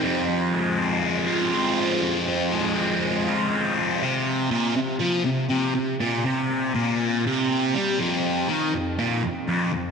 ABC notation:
X:1
M:4/4
L:1/8
Q:1/4=121
K:Fdor
V:1 name="Distorted electric guitar" clef=bass
F,, F, A, C A, F C F, | F,, F, A, C A, F C F, | C,2 B,, C, F, C, C, C, | B,, C,2 B,,2 C,2 G, |
F,,2 E, F,, B,, F,, F,, F,, |]